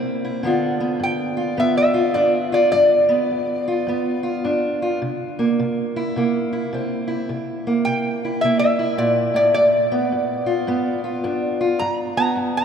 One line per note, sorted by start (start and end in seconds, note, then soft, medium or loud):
0.00 0.40 C3 medium
0.00 0.43 A#3 medium
0.00 0.42 C4 medium
0.00 0.23 E4 medium
0.25 0.45 E4 medium
0.43 0.97 G2 medium
0.43 4.99 D3 medium
0.43 0.80 B3 medium
0.43 2.14 D4 medium
0.43 1.36 F4 medium
0.80 1.57 B3 medium
1.00 1.53 G2 medium
1.00 1.58 G5 medium
1.37 1.93 F4 medium
1.57 2.11 G2 medium
1.57 2.69 B3 medium
1.57 1.76 E5 loud
1.77 2.14 E5 medium
1.94 2.51 F4 medium
2.14 2.68 G2 medium
2.14 2.70 D4 medium
2.14 2.52 D5 medium
2.52 2.70 F4 medium
2.52 2.71 D5 medium
2.72 3.25 G2 medium
2.72 4.39 D5 loud
3.09 3.87 B3 medium
3.31 3.83 G2 medium
3.68 4.22 F4 medium
3.87 4.39 G2 medium
3.87 4.99 B3 medium
4.23 4.79 F4 medium
4.44 4.96 G2 medium
4.44 4.98 D4 medium
4.82 4.99 F4 medium
5.02 5.54 C3 medium
5.39 6.17 A#3 medium
5.59 6.11 C3 medium
5.96 6.51 E4 medium
6.16 6.68 C3 medium
6.16 7.27 A#3 medium
6.53 7.06 E4 medium
6.73 7.24 C3 medium
6.73 7.27 C4 medium
7.08 8.20 E4 medium
7.29 7.81 C3 medium
7.67 8.43 A#3 medium
7.85 8.38 C3 medium
7.85 8.40 G5 medium
8.25 8.78 E4 medium
8.41 8.95 C3 medium
8.41 9.54 A#3 medium
8.41 8.58 E5 medium
8.59 8.96 E5 loud
8.79 9.56 E4 medium
8.98 9.33 A#2 medium
8.98 9.35 D5 medium
9.34 9.55 A2 medium
9.34 9.53 D5 medium
9.54 10.08 G2 medium
9.54 11.20 D5 loud
9.92 10.68 B3 medium
10.12 10.64 G2 medium
10.46 11.03 F4 medium
10.67 11.20 G2 medium
10.67 11.78 B3 medium
11.04 11.59 F4 medium
11.24 11.76 G2 medium
11.24 12.65 D4 medium
11.61 11.79 F4 medium
11.79 12.33 G2 medium
11.79 11.98 A#5 loud
12.17 12.65 B3 medium
12.17 12.36 A#5 loud
12.36 12.65 G2 medium
12.57 12.65 A#5 medium